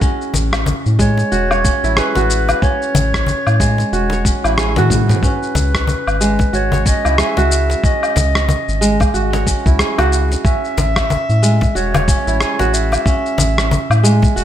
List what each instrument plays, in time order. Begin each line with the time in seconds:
Already playing: kora E4 F#4 G#4
0.01 kora C#4, kick, shaker
0.21 shaker
0.34 analog synth bass A1, cajon bass, cajon slap, shaker
0.53 cross-stick, low woodblock, shaker
0.66 cajon bass, shaker
0.86 analog synth bass A2, shaker
0.99 kora G#3, clarinet C#5, kick, shaker
1.17 cajon slap, shaker
1.32 analog synth bass E1, kora F#4, shaker
1.51 kora C#5, low woodblock, shaker
1.64 kora C#4, kick, shaker
1.84 analog synth bass A1, kora E4, shaker
1.97 kora G#4, clarinet B4, cross-stick, shaker
2.15 analog synth bass A1, kora F#4, cajon slap, shaker
2.30 shaker
2.49 cajon slap, low woodblock, shaker
2.62 kora C#4, clarinet C#5, kick, shaker
2.82 shaker
2.95 analog synth bass A1, cajon bass, cajon slap, shaker
3.14 kick, cross-stick, shaker
3.27 cajon bass, shaker
3.47 analog synth bass A2, low woodblock, shaker
3.60 kora G#3, kick, shaker
3.78 cajon slap, shaker
3.92 analog synth bass E1, kora F#4, shaker
4.10 kora C#5, cajon slap, shaker
4.25 kora C#4, kick, shaker
4.44 analog synth bass A1, kora E4, low woodblock, shaker
4.58 kora G#4, cross-stick, shaker
4.76 analog synth bass A2, kora F#4, cajon slap, high tom, shaker
4.90 kick, mid tom, shaker
5.09 cajon slap, mid tom, shaker
5.23 kora C#4, clarinet B4, kick, shaker
5.43 shaker
5.55 analog synth bass C#2, cajon bass, cajon slap, shaker
5.74 kick, cross-stick, shaker
5.87 cajon bass, shaker
6.07 analog synth bass G#1, low woodblock, shaker
6.21 kora G#3, shaker
6.39 kick, cajon slap, shaker
6.53 analog synth bass G#1, kora F#4, clarinet C#5, shaker
6.72 kora C#5, cajon bass, shaker
6.86 kora C#4, clarinet D#5, kick, shaker
7.05 analog synth bass C#2, kora E4, low woodblock, shaker
7.18 kora G#4, clarinet E5, cross-stick, shaker
7.37 analog synth bass C#2, kora F#4, cajon slap, shaker
7.52 shaker
7.70 cajon slap, shaker
7.84 kora C#4, clarinet D#5, kick, shaker
8.03 low woodblock, shaker
8.16 analog synth bass C#2, cajon bass, cajon slap, shaker
8.35 cross-stick, shaker
8.49 cajon bass, shaker
8.68 analog synth bass G#1, shaker
8.81 kora G#3, shaker
9.00 kick, cajon slap, low woodblock, shaker
9.14 analog synth bass G#1, kora F#4, shaker
9.33 kora C#5, cajon slap, shaker
9.47 kora C#4, kick, shaker
9.66 analog synth bass C#2, kora E4, kick, shaker
9.79 kora G#4, cross-stick, shaker
9.98 analog synth bass C#2, kora F#4, cajon slap, low woodblock, shaker
10.13 shaker
10.32 cajon slap, shaker
10.44 kora C#4, clarinet E5, kick, shaker
10.65 shaker
10.78 analog synth bass A1, cajon bass, cajon slap, shaker
10.96 kick, cross-stick, low woodblock, shaker
11.10 cajon bass, shaker
11.29 analog synth bass A2, shaker
11.42 kora G#3, shaker
11.61 kick, cajon slap, shaker
11.75 analog synth bass E1, kora F#4, clarinet C#5, shaker
11.94 kora C#5, cajon bass, low woodblock, shaker
12.08 kora C#4, kick, shaker
12.27 analog synth bass A1, kora E4, shaker
12.41 kora G#4, cross-stick, shaker
12.59 analog synth bass A1, kora F#4, cajon slap, shaker
12.74 clarinet E5, shaker
12.92 cajon slap, low woodblock, shaker
13.06 kora C#4, kick, shaker
13.26 shaker
13.38 analog synth bass A1, cajon bass, cajon slap, shaker
13.58 cross-stick, shaker
13.71 cajon bass, shaker
13.90 analog synth bass A2, low woodblock, shaker
14.03 kora G#3, shaker
14.22 kick, cajon slap, shaker
14.36 analog synth bass E1, kora F#4, shaker